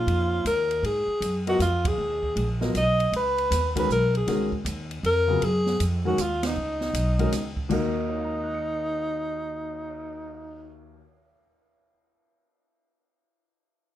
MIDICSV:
0, 0, Header, 1, 7, 480
1, 0, Start_track
1, 0, Key_signature, -6, "minor"
1, 0, Tempo, 380711
1, 1055, Time_signature, 3, 2, 24, 8
1, 17593, End_track
2, 0, Start_track
2, 0, Title_t, "Alto saxophone"
2, 0, Program_c, 0, 65
2, 0, Note_on_c, 0, 65, 85
2, 584, Note_off_c, 0, 65, 0
2, 591, Note_on_c, 0, 70, 89
2, 1031, Note_off_c, 0, 70, 0
2, 1076, Note_on_c, 0, 68, 84
2, 1810, Note_off_c, 0, 68, 0
2, 1878, Note_on_c, 0, 66, 88
2, 2022, Note_off_c, 0, 66, 0
2, 2042, Note_on_c, 0, 65, 83
2, 2368, Note_on_c, 0, 68, 85
2, 2387, Note_off_c, 0, 65, 0
2, 3181, Note_off_c, 0, 68, 0
2, 3495, Note_on_c, 0, 75, 102
2, 3928, Note_off_c, 0, 75, 0
2, 3988, Note_on_c, 0, 71, 94
2, 4709, Note_off_c, 0, 71, 0
2, 4781, Note_on_c, 0, 71, 88
2, 4918, Note_off_c, 0, 71, 0
2, 4945, Note_on_c, 0, 70, 87
2, 5217, Note_off_c, 0, 70, 0
2, 5259, Note_on_c, 0, 68, 72
2, 5687, Note_off_c, 0, 68, 0
2, 6382, Note_on_c, 0, 70, 99
2, 6864, Note_on_c, 0, 68, 95
2, 6883, Note_off_c, 0, 70, 0
2, 7326, Note_off_c, 0, 68, 0
2, 7656, Note_on_c, 0, 66, 80
2, 7838, Note_on_c, 0, 65, 87
2, 7857, Note_off_c, 0, 66, 0
2, 8125, Note_off_c, 0, 65, 0
2, 8152, Note_on_c, 0, 63, 78
2, 9515, Note_off_c, 0, 63, 0
2, 9727, Note_on_c, 0, 63, 74
2, 13552, Note_off_c, 0, 63, 0
2, 17593, End_track
3, 0, Start_track
3, 0, Title_t, "Upright piano"
3, 0, Program_c, 1, 0
3, 0, Note_on_c, 1, 53, 64
3, 0, Note_on_c, 1, 58, 51
3, 0, Note_on_c, 1, 63, 56
3, 0, Note_on_c, 1, 68, 57
3, 0, Note_on_c, 1, 73, 69
3, 953, Note_off_c, 1, 53, 0
3, 953, Note_off_c, 1, 58, 0
3, 955, Note_off_c, 1, 63, 0
3, 956, Note_off_c, 1, 68, 0
3, 957, Note_off_c, 1, 73, 0
3, 1850, Note_on_c, 1, 54, 67
3, 1851, Note_on_c, 1, 59, 59
3, 1852, Note_on_c, 1, 65, 58
3, 1858, Note_on_c, 1, 70, 59
3, 1861, Note_on_c, 1, 75, 73
3, 2003, Note_off_c, 1, 54, 0
3, 2003, Note_off_c, 1, 59, 0
3, 2003, Note_off_c, 1, 65, 0
3, 2006, Note_off_c, 1, 70, 0
3, 2008, Note_off_c, 1, 75, 0
3, 3289, Note_on_c, 1, 54, 63
3, 3289, Note_on_c, 1, 59, 57
3, 3289, Note_on_c, 1, 65, 54
3, 3290, Note_on_c, 1, 70, 57
3, 3294, Note_on_c, 1, 75, 67
3, 3443, Note_off_c, 1, 54, 0
3, 3444, Note_off_c, 1, 59, 0
3, 3444, Note_off_c, 1, 65, 0
3, 3444, Note_off_c, 1, 70, 0
3, 3447, Note_off_c, 1, 75, 0
3, 4734, Note_on_c, 1, 51, 65
3, 4734, Note_on_c, 1, 56, 58
3, 4736, Note_on_c, 1, 66, 61
3, 4737, Note_on_c, 1, 61, 60
3, 4740, Note_on_c, 1, 70, 70
3, 4888, Note_off_c, 1, 51, 0
3, 4888, Note_off_c, 1, 56, 0
3, 4889, Note_off_c, 1, 61, 0
3, 4889, Note_off_c, 1, 66, 0
3, 4891, Note_off_c, 1, 70, 0
3, 5389, Note_on_c, 1, 51, 59
3, 5389, Note_on_c, 1, 56, 56
3, 5390, Note_on_c, 1, 61, 57
3, 5396, Note_on_c, 1, 66, 62
3, 5396, Note_on_c, 1, 70, 72
3, 5669, Note_off_c, 1, 51, 0
3, 5669, Note_off_c, 1, 56, 0
3, 5669, Note_off_c, 1, 61, 0
3, 5672, Note_off_c, 1, 66, 0
3, 5672, Note_off_c, 1, 70, 0
3, 6653, Note_on_c, 1, 49, 73
3, 6657, Note_on_c, 1, 54, 62
3, 6663, Note_on_c, 1, 59, 61
3, 6665, Note_on_c, 1, 65, 60
3, 6665, Note_on_c, 1, 68, 70
3, 6808, Note_off_c, 1, 49, 0
3, 6810, Note_off_c, 1, 54, 0
3, 6813, Note_off_c, 1, 59, 0
3, 6814, Note_off_c, 1, 65, 0
3, 6814, Note_off_c, 1, 68, 0
3, 7629, Note_on_c, 1, 51, 60
3, 7632, Note_on_c, 1, 61, 58
3, 7633, Note_on_c, 1, 56, 57
3, 7634, Note_on_c, 1, 66, 54
3, 7635, Note_on_c, 1, 70, 67
3, 7776, Note_off_c, 1, 51, 0
3, 7778, Note_off_c, 1, 56, 0
3, 7778, Note_off_c, 1, 61, 0
3, 7779, Note_off_c, 1, 66, 0
3, 7779, Note_off_c, 1, 70, 0
3, 9062, Note_on_c, 1, 51, 65
3, 9063, Note_on_c, 1, 56, 59
3, 9065, Note_on_c, 1, 61, 60
3, 9067, Note_on_c, 1, 66, 60
3, 9073, Note_on_c, 1, 70, 76
3, 9212, Note_off_c, 1, 51, 0
3, 9213, Note_off_c, 1, 56, 0
3, 9214, Note_off_c, 1, 61, 0
3, 9215, Note_off_c, 1, 66, 0
3, 9218, Note_off_c, 1, 70, 0
3, 9698, Note_on_c, 1, 39, 68
3, 9712, Note_on_c, 1, 51, 62
3, 9721, Note_on_c, 1, 58, 61
3, 9730, Note_on_c, 1, 66, 62
3, 9738, Note_on_c, 1, 70, 70
3, 10199, Note_on_c, 1, 73, 48
3, 10296, Note_on_c, 1, 77, 40
3, 10396, Note_on_c, 1, 82, 40
3, 10511, Note_on_c, 1, 87, 42
3, 10638, Note_on_c, 1, 90, 36
3, 10772, Note_on_c, 1, 97, 37
3, 13825, Note_off_c, 1, 39, 0
3, 13840, Note_off_c, 1, 51, 0
3, 13849, Note_off_c, 1, 58, 0
3, 13858, Note_off_c, 1, 66, 0
3, 13866, Note_off_c, 1, 70, 0
3, 14276, Note_off_c, 1, 73, 0
3, 14373, Note_off_c, 1, 77, 0
3, 14472, Note_off_c, 1, 82, 0
3, 14587, Note_off_c, 1, 87, 0
3, 14650, Note_off_c, 1, 90, 0
3, 14717, Note_off_c, 1, 97, 0
3, 17593, End_track
4, 0, Start_track
4, 0, Title_t, "Upright bass"
4, 0, Program_c, 2, 32
4, 85, Note_on_c, 2, 41, 86
4, 556, Note_off_c, 2, 41, 0
4, 566, Note_on_c, 2, 39, 93
4, 1037, Note_off_c, 2, 39, 0
4, 1043, Note_on_c, 2, 44, 81
4, 1340, Note_off_c, 2, 44, 0
4, 1520, Note_on_c, 2, 42, 88
4, 1996, Note_off_c, 2, 42, 0
4, 2007, Note_on_c, 2, 41, 91
4, 2480, Note_off_c, 2, 41, 0
4, 2495, Note_on_c, 2, 39, 83
4, 2965, Note_off_c, 2, 39, 0
4, 2973, Note_on_c, 2, 34, 88
4, 3444, Note_off_c, 2, 34, 0
4, 3458, Note_on_c, 2, 35, 88
4, 3928, Note_off_c, 2, 35, 0
4, 3933, Note_on_c, 2, 37, 78
4, 4405, Note_off_c, 2, 37, 0
4, 4421, Note_on_c, 2, 39, 86
4, 4890, Note_off_c, 2, 39, 0
4, 4900, Note_on_c, 2, 35, 90
4, 5369, Note_off_c, 2, 35, 0
4, 5383, Note_on_c, 2, 37, 82
4, 5851, Note_off_c, 2, 37, 0
4, 5859, Note_on_c, 2, 39, 97
4, 6329, Note_off_c, 2, 39, 0
4, 6345, Note_on_c, 2, 41, 95
4, 6812, Note_off_c, 2, 41, 0
4, 6830, Note_on_c, 2, 42, 86
4, 7295, Note_off_c, 2, 42, 0
4, 7312, Note_on_c, 2, 41, 92
4, 7776, Note_off_c, 2, 41, 0
4, 7792, Note_on_c, 2, 39, 88
4, 8256, Note_off_c, 2, 39, 0
4, 8268, Note_on_c, 2, 37, 86
4, 8733, Note_off_c, 2, 37, 0
4, 8744, Note_on_c, 2, 35, 87
4, 9211, Note_off_c, 2, 35, 0
4, 9227, Note_on_c, 2, 37, 88
4, 9693, Note_off_c, 2, 37, 0
4, 9703, Note_on_c, 2, 39, 83
4, 13780, Note_off_c, 2, 39, 0
4, 17593, End_track
5, 0, Start_track
5, 0, Title_t, "Cymbal swell"
5, 10025, Note_on_c, 9, 59, 44
5, 12486, Note_off_c, 9, 59, 0
5, 17593, End_track
6, 0, Start_track
6, 0, Title_t, "Muted upright bass strokes"
6, 1354, Note_on_c, 9, 29, 38
6, 1480, Note_off_c, 9, 29, 0
6, 17593, End_track
7, 0, Start_track
7, 0, Title_t, "Drums"
7, 99, Note_on_c, 9, 51, 57
7, 225, Note_off_c, 9, 51, 0
7, 576, Note_on_c, 9, 44, 50
7, 576, Note_on_c, 9, 51, 63
7, 702, Note_off_c, 9, 44, 0
7, 702, Note_off_c, 9, 51, 0
7, 892, Note_on_c, 9, 51, 46
7, 1018, Note_off_c, 9, 51, 0
7, 1064, Note_on_c, 9, 51, 60
7, 1190, Note_off_c, 9, 51, 0
7, 1539, Note_on_c, 9, 44, 56
7, 1539, Note_on_c, 9, 51, 66
7, 1665, Note_off_c, 9, 44, 0
7, 1665, Note_off_c, 9, 51, 0
7, 1855, Note_on_c, 9, 51, 45
7, 1981, Note_off_c, 9, 51, 0
7, 2020, Note_on_c, 9, 44, 54
7, 2020, Note_on_c, 9, 51, 62
7, 2146, Note_off_c, 9, 44, 0
7, 2146, Note_off_c, 9, 51, 0
7, 2330, Note_on_c, 9, 36, 85
7, 2333, Note_on_c, 9, 51, 72
7, 2457, Note_off_c, 9, 36, 0
7, 2459, Note_off_c, 9, 51, 0
7, 2809, Note_on_c, 9, 36, 45
7, 2935, Note_off_c, 9, 36, 0
7, 2983, Note_on_c, 9, 51, 62
7, 3109, Note_off_c, 9, 51, 0
7, 3293, Note_on_c, 9, 38, 52
7, 3419, Note_off_c, 9, 38, 0
7, 3464, Note_on_c, 9, 44, 57
7, 3464, Note_on_c, 9, 51, 61
7, 3590, Note_off_c, 9, 44, 0
7, 3590, Note_off_c, 9, 51, 0
7, 3783, Note_on_c, 9, 51, 45
7, 3909, Note_off_c, 9, 51, 0
7, 3951, Note_on_c, 9, 51, 60
7, 4077, Note_off_c, 9, 51, 0
7, 4265, Note_on_c, 9, 51, 46
7, 4391, Note_off_c, 9, 51, 0
7, 4431, Note_on_c, 9, 38, 37
7, 4434, Note_on_c, 9, 44, 61
7, 4434, Note_on_c, 9, 51, 76
7, 4557, Note_off_c, 9, 38, 0
7, 4560, Note_off_c, 9, 44, 0
7, 4560, Note_off_c, 9, 51, 0
7, 4737, Note_on_c, 9, 36, 54
7, 4748, Note_on_c, 9, 51, 71
7, 4863, Note_off_c, 9, 36, 0
7, 4874, Note_off_c, 9, 51, 0
7, 4916, Note_on_c, 9, 44, 48
7, 5042, Note_off_c, 9, 44, 0
7, 5230, Note_on_c, 9, 51, 41
7, 5356, Note_off_c, 9, 51, 0
7, 5389, Note_on_c, 9, 38, 38
7, 5391, Note_on_c, 9, 51, 61
7, 5515, Note_off_c, 9, 38, 0
7, 5517, Note_off_c, 9, 51, 0
7, 5701, Note_on_c, 9, 36, 53
7, 5827, Note_off_c, 9, 36, 0
7, 5873, Note_on_c, 9, 44, 60
7, 5873, Note_on_c, 9, 51, 69
7, 6000, Note_off_c, 9, 44, 0
7, 6000, Note_off_c, 9, 51, 0
7, 6190, Note_on_c, 9, 51, 45
7, 6316, Note_off_c, 9, 51, 0
7, 6360, Note_on_c, 9, 51, 57
7, 6486, Note_off_c, 9, 51, 0
7, 6832, Note_on_c, 9, 51, 60
7, 6958, Note_off_c, 9, 51, 0
7, 7140, Note_on_c, 9, 38, 55
7, 7266, Note_off_c, 9, 38, 0
7, 7314, Note_on_c, 9, 44, 62
7, 7314, Note_on_c, 9, 51, 72
7, 7440, Note_off_c, 9, 44, 0
7, 7440, Note_off_c, 9, 51, 0
7, 7794, Note_on_c, 9, 44, 58
7, 7794, Note_on_c, 9, 51, 63
7, 7920, Note_off_c, 9, 44, 0
7, 7920, Note_off_c, 9, 51, 0
7, 8106, Note_on_c, 9, 38, 81
7, 8108, Note_on_c, 9, 51, 71
7, 8232, Note_off_c, 9, 38, 0
7, 8234, Note_off_c, 9, 51, 0
7, 8584, Note_on_c, 9, 38, 50
7, 8710, Note_off_c, 9, 38, 0
7, 8757, Note_on_c, 9, 44, 54
7, 8757, Note_on_c, 9, 51, 74
7, 8883, Note_off_c, 9, 44, 0
7, 8883, Note_off_c, 9, 51, 0
7, 9068, Note_on_c, 9, 51, 45
7, 9194, Note_off_c, 9, 51, 0
7, 9233, Note_on_c, 9, 38, 35
7, 9235, Note_on_c, 9, 44, 55
7, 9235, Note_on_c, 9, 51, 65
7, 9359, Note_off_c, 9, 38, 0
7, 9361, Note_off_c, 9, 44, 0
7, 9361, Note_off_c, 9, 51, 0
7, 9540, Note_on_c, 9, 36, 56
7, 9666, Note_off_c, 9, 36, 0
7, 9708, Note_on_c, 9, 36, 52
7, 9714, Note_on_c, 9, 49, 61
7, 9834, Note_off_c, 9, 36, 0
7, 9840, Note_off_c, 9, 49, 0
7, 17593, End_track
0, 0, End_of_file